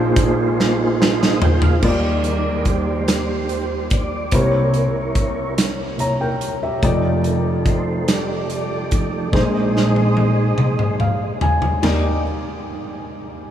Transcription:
0.00 1.79 A#1 medium
0.00 1.79 A#2 medium
0.00 1.78 A#3 medium
0.00 1.79 A#3 medium
0.00 1.78 D#4 medium
0.00 1.79 D#4 medium
0.00 1.78 F4 medium
0.00 1.79 F4 medium
0.00 1.78 G#4 medium
0.00 1.80 G#4 medium
0.00 1.84 A4 medium
0.00 1.78 C5 medium
0.00 1.80 C5 medium
0.00 1.84 F5 medium
0.16 kick medium
0.16 closed hi-hat medium
0.60 snare medium
1.02 snare medium
1.21 1.40 D#5 medium
1.21 snare medium
1.42 1.62 G5 medium
1.42 floor tom loud
1.62 2.02 F5 medium
1.62 floor tom medium
1.81 4.29 D#2 medium
1.81 3.03 D#3 soft
1.81 4.29 D#3 medium
1.81 3.03 G3 soft
1.81 4.28 A#3 medium
1.81 4.29 D#4 medium
1.81 1.90 F4 soft
1.81 3.03 D5 soft
1.81 4.29 D5 medium
1.81 kick medium
1.81 crash medium
1.90 4.32 G4 medium
2.24 2.68 A#4 medium
2.24 closed hi-hat soft
2.65 3.87 G4 medium
2.65 3.95 C5 medium
2.65 kick medium
2.65 closed hi-hat soft
3.08 snare medium
3.08 closed hi-hat medium
3.49 closed hi-hat soft
3.90 4.35 D5 medium
3.90 kick medium
3.90 closed hi-hat medium
4.32 6.79 C2 soft
4.32 4.88 C3 soft
4.32 6.79 C3 medium
4.32 4.88 A#3 soft
4.32 6.78 C4 medium
4.32 6.79 E4 soft
4.32 5.54 E4 soft
4.32 5.54 A#4 medium
4.32 5.96 A#4 soft
4.32 4.40 C5 soft
4.32 5.54 C#5 soft
4.32 kick medium
4.32 closed hi-hat medium
4.41 5.99 C#5 medium
4.74 closed hi-hat soft
5.15 kick medium
5.15 closed hi-hat soft
5.58 snare medium
5.58 closed hi-hat medium
5.97 6.36 C3 soft
5.97 6.36 A#3 soft
5.97 6.36 E4 soft
5.97 6.20 C#5 soft
5.97 6.19 A#5 medium
5.97 closed hi-hat soft
6.21 6.60 A#4 soft
6.21 6.60 G5 medium
6.41 closed hi-hat soft
6.63 6.82 G4 soft
6.63 7.02 E5 soft
6.83 9.29 F1 medium
6.83 9.29 F2 medium
6.83 8.04 F3 soft
6.83 9.29 A3 medium
6.83 8.04 D#4 soft
6.83 9.29 D#4 medium
6.83 9.29 G4 medium
6.83 8.04 A4 soft
6.83 9.30 D5 medium
6.83 kick medium
6.83 closed hi-hat medium
7.24 7.45 A#4 medium
7.24 closed hi-hat soft
7.66 8.10 C5 medium
7.66 kick medium
7.66 closed hi-hat soft
8.08 9.29 G4 soft
8.08 9.29 A4 medium
8.08 9.37 D5 medium
8.08 snare medium
8.08 closed hi-hat medium
8.50 closed hi-hat soft
8.91 9.29 F3 soft
8.91 9.29 A3 soft
8.91 9.29 D#4 soft
8.91 kick medium
8.91 closed hi-hat soft
9.31 11.80 A#1 medium
9.31 10.53 A#2 soft
9.31 11.80 A#2 medium
9.31 10.54 G#3 soft
9.31 11.79 A#3 soft
9.31 11.79 D#4 soft
9.31 10.54 D#4 medium
9.31 10.96 G#4 medium
9.31 11.80 G#4 soft
9.31 10.96 C5 medium
9.31 11.80 C5 medium
9.31 10.96 D#5 medium
9.31 kick medium
9.31 snare soft
9.77 snare medium
9.96 high tom soft
10.17 high tom medium
10.58 mid tom medium
10.79 mid tom medium
11.00 11.39 F5 medium
11.00 mid tom medium
11.41 11.81 G#5 medium
11.41 floor tom medium
11.62 floor tom medium
11.82 12.22 D#2 medium
11.82 12.22 A#3 medium
11.82 12.22 D#4 medium
11.82 12.22 G4 medium
11.82 12.22 D5 medium
11.82 snare medium
11.82 floor tom medium
11.82 crash medium

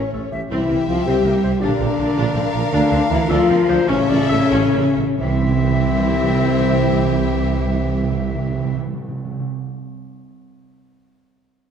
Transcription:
0.00 0.30 C#4 loud
0.00 0.30 C#4 medium
0.00 0.32 C#4 medium
0.00 0.21 C#5 medium
0.00 0.31 C#5 medium
0.13 0.21 A1 medium
0.13 0.21 A2 medium
0.13 0.22 A4 medium
0.31 0.40 A1 medium
0.31 0.40 A2 medium
0.31 0.50 G4 medium
0.31 0.41 E5 medium
0.50 0.58 C2 loud
0.50 0.85 E3 medium
0.50 0.68 C4 medium
0.50 0.85 E4 loud
0.50 1.58 G4 loud
0.50 1.58 E5 medium
0.69 0.77 C2 medium
0.69 0.77 A#3 medium
0.87 0.96 C2 medium
0.87 1.07 F3 loud
0.87 0.96 C4 medium
0.87 1.06 F4 loud
1.06 1.14 C2 loud
1.06 1.15 C2 loud
1.06 1.61 G3 loud
1.06 1.24 C4 medium
1.06 1.61 G4 loud
1.06 1.26 C5 medium
1.25 1.32 C2 medium
1.25 1.33 C2 medium
1.25 1.33 A#3 medium
1.25 1.43 A#4 medium
1.43 1.51 C2 medium
1.43 1.52 C2 medium
1.43 1.51 C4 medium
1.43 1.52 C5 medium
1.61 1.69 A#1 loud
1.61 1.71 A#1 medium
1.61 2.72 D3 loud
1.61 2.72 D4 loud
1.61 1.79 D4 medium
1.61 3.89 A#4 loud
1.61 2.70 D5 loud
1.61 3.89 F5 loud
1.80 1.88 A#1 medium
1.80 1.89 A#1 medium
1.80 1.88 C4 medium
1.99 2.07 A#1 medium
1.99 2.06 D4 medium
2.17 2.25 A#1 loud
2.17 2.34 D4 loud
2.35 2.44 A#1 medium
2.35 2.43 C4 medium
2.54 2.62 A#1 medium
2.54 2.62 D4 medium
2.72 2.80 D2 loud
2.72 2.81 D2 loud
2.72 3.10 D3 loud
2.72 2.90 D4 medium
2.72 3.10 D4 loud
2.72 3.29 F5 loud
2.92 2.99 D2 medium
2.92 2.99 C4 medium
3.10 3.19 D2 medium
3.10 3.29 E3 loud
3.10 3.18 D4 medium
3.10 3.29 E4 loud
3.29 3.38 D2 loud
3.29 3.88 F3 loud
3.29 3.47 D4 loud
3.29 3.87 F4 loud
3.29 3.51 A4 loud
3.49 3.57 D2 medium
3.49 3.58 D2 medium
3.49 3.57 C4 loud
3.49 3.68 A#4 loud
3.68 3.77 D2 medium
3.68 3.77 D2 loud
3.68 3.76 D4 loud
3.68 3.88 C5 loud
3.88 3.96 A1 loud
3.88 3.98 A1 loud
3.88 5.20 C#3 loud
3.88 4.07 C#4 loud
3.88 5.17 C#4 loud
3.88 4.96 A4 loud
3.88 4.11 C#5 loud
3.88 4.94 E5 loud
4.09 4.17 A1 medium
4.09 4.18 A1 medium
4.09 4.17 A#3 medium
4.09 4.28 D5 loud
4.29 4.38 A1 medium
4.29 4.39 A1 loud
4.29 4.38 C#4 medium
4.29 4.50 E5 loud
4.51 4.59 A1 loud
4.51 4.61 A1 loud
4.51 4.72 C#4 loud
4.51 4.84 C#5 loud
4.73 4.81 A1 medium
4.73 4.83 A1 medium
4.73 4.82 A#3 medium
4.96 5.05 A1 medium
4.96 5.04 A1 medium
4.96 5.04 C#4 medium
5.18 8.73 C2 loud
5.18 8.74 C2 loud
5.18 5.26 C3 medium
5.18 8.74 E3 medium
5.18 8.73 C4 loud
5.18 8.74 E4 loud
5.18 8.73 G4 medium
5.18 8.73 G4 loud
5.18 8.74 E5 loud
5.26 5.33 C3 medium
5.34 5.41 C3 medium
5.41 5.48 C3 medium
5.48 5.55 C3 medium
5.56 5.63 C3 medium
5.64 5.71 C3 medium
5.71 5.79 C3 medium
5.79 5.87 C3 medium
5.87 5.94 C3 medium
5.94 6.01 C3 medium
6.01 6.09 C3 medium
6.09 6.16 C3 medium
6.16 6.24 C3 medium
6.24 6.31 C3 medium
6.32 6.39 C3 medium
6.39 6.46 C3 medium
6.47 6.54 C3 medium
6.54 6.61 C3 medium
6.61 6.68 C3 medium
6.68 6.76 C3 medium
6.76 6.83 C3 medium
6.91 6.98 C3 medium
7.06 7.13 C3 medium
7.13 7.21 C3 medium
7.21 7.28 C3 medium
7.28 7.35 C3 medium
7.36 7.43 C3 medium
7.44 7.51 C3 medium
7.52 7.59 C3 medium
7.59 7.66 C3 medium
7.67 7.74 C3 medium
7.74 7.81 C3 medium
7.82 7.89 C3 medium
7.90 7.97 C3 medium
7.97 8.04 C3 medium
8.04 8.12 C3 medium
8.12 8.19 C3 medium
8.20 8.27 C3 medium
8.28 8.35 C3 medium
8.35 8.42 C3 medium
8.42 8.49 C3 medium
8.50 8.57 C3 medium
8.57 8.65 C3 medium
8.65 8.71 C3 medium
8.71 8.79 C3 medium
8.79 8.87 C3 medium
8.87 8.94 C3 medium
8.94 9.01 C3 medium
9.01 9.09 C3 medium
9.09 9.16 C3 medium
9.17 9.25 C3 medium
9.25 9.32 C3 medium
9.32 9.40 C3 medium
9.40 9.47 C3 medium

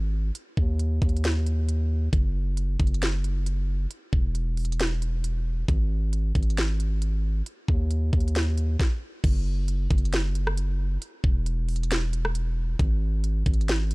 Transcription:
0.00 0.31 G#1 loud
0.35 closed hi-hat medium
0.57 1.00 D#2 loud
0.57 kick medium
0.79 closed hi-hat medium
1.02 2.09 D#2 loud
1.02 kick medium
1.02 closed hi-hat soft
1.09 closed hi-hat medium
1.17 closed hi-hat medium
1.24 snare loud
1.24 closed hi-hat medium
1.46 closed hi-hat medium
1.69 closed hi-hat medium
2.13 2.77 F#1 loud
2.13 kick loud
2.13 closed hi-hat medium
2.57 closed hi-hat medium
2.80 3.87 F#1 loud
2.80 kick medium
2.80 closed hi-hat medium
2.87 closed hi-hat medium
2.94 closed hi-hat medium
3.02 snare loud
3.02 closed hi-hat medium
3.24 closed hi-hat medium
3.46 closed hi-hat medium
3.91 closed hi-hat medium
4.13 5.64 E1 loud
4.13 kick medium
4.35 closed hi-hat medium
4.57 closed hi-hat medium
4.57 open hi-hat soft
4.65 closed hi-hat medium
4.72 closed hi-hat medium
4.80 snare loud
4.80 closed hi-hat medium
5.02 closed hi-hat medium
5.24 closed hi-hat medium
5.68 6.32 G#1 loud
5.68 kick loud
5.68 closed hi-hat medium
6.13 closed hi-hat medium
6.35 7.42 G#1 loud
6.35 kick medium
6.35 closed hi-hat medium
6.43 closed hi-hat medium
6.50 closed hi-hat medium
6.57 snare loud
6.57 closed hi-hat medium
6.80 closed hi-hat medium
7.02 closed hi-hat medium
7.46 closed hi-hat medium
7.68 8.11 D#2 loud
7.68 kick medium
7.91 closed hi-hat medium
8.13 8.77 D#2 loud
8.13 kick medium
8.13 closed hi-hat soft
8.20 closed hi-hat medium
8.28 closed hi-hat medium
8.35 snare loud
8.35 closed hi-hat medium
8.58 closed hi-hat medium
8.80 kick loud
8.80 snare medium
9.24 9.88 F#1 loud
9.24 kick loud
9.24 closed hi-hat medium
9.24 crash loud
9.68 closed hi-hat medium
9.90 10.98 F#1 loud
9.90 kick medium
9.90 closed hi-hat medium
9.98 closed hi-hat medium
10.05 closed hi-hat medium
10.13 snare loud
10.13 closed hi-hat medium
10.35 closed hi-hat medium
10.47 cross-stick loud
10.57 closed hi-hat medium
11.02 closed hi-hat medium
11.24 12.75 E1 loud
11.24 kick loud
11.46 closed hi-hat medium
11.69 closed hi-hat medium
11.69 open hi-hat soft
11.76 closed hi-hat medium
11.83 closed hi-hat medium
11.91 snare loud
11.91 closed hi-hat medium
12.13 closed hi-hat medium
12.25 cross-stick loud
12.35 closed hi-hat medium
12.79 13.43 G#1 loud
12.79 kick loud
12.79 closed hi-hat medium
13.24 closed hi-hat medium
13.46 13.95 G#1 loud
13.46 kick medium
13.46 closed hi-hat medium
13.54 closed hi-hat medium
13.61 closed hi-hat medium
13.68 snare loud
13.68 closed hi-hat medium
13.91 closed hi-hat medium

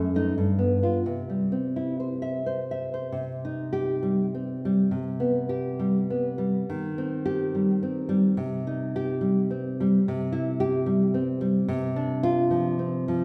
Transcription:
0.00 0.33 F#2 medium
0.00 0.14 A3 medium
0.15 0.33 A3 soft
0.15 0.34 D#4 medium
0.38 1.04 G2 medium
0.58 0.81 B3 soft
0.82 1.03 B3 soft
0.82 1.03 F4 medium
1.06 3.11 C3 medium
1.30 2.36 G3 soft
1.52 2.46 C4 soft
1.76 1.99 E4 soft
2.00 2.22 C5 soft
2.22 2.60 E5 medium
2.46 2.93 C5 soft
2.71 3.16 E5 medium
2.94 3.15 C5 soft
3.12 4.89 C3 medium
3.45 4.34 D#4 medium
3.73 4.22 G4 medium
4.03 4.64 G3 medium
4.35 4.93 C4 soft
4.65 4.94 G3 medium
4.91 6.64 C3 medium
5.20 6.09 B3 medium
5.49 5.98 G4 medium
5.79 6.37 G3 medium
6.10 6.69 B3 soft
6.38 6.68 G3 medium
6.70 8.34 D#3 medium
6.98 7.81 C4 medium
7.26 7.70 G4 medium
7.55 8.08 G3 soft
7.83 8.39 C4 medium
8.09 8.38 G3 medium
8.37 9.99 C3 medium
8.67 9.49 D#4 medium
8.96 9.39 G4 medium
9.21 9.79 G3 medium
9.51 10.04 C4 medium
9.80 10.05 G3 medium
10.08 11.64 C3 medium
10.32 11.12 E4 medium
10.60 11.02 G4 medium
10.86 11.40 G3 medium
11.14 11.67 C4 medium
11.41 11.67 G3 medium
11.68 13.24 C3 medium
11.96 12.78 D4 medium
12.23 12.66 F4 medium
12.51 13.07 F3 medium
12.79 13.24 C4 medium
13.08 13.24 F3 medium

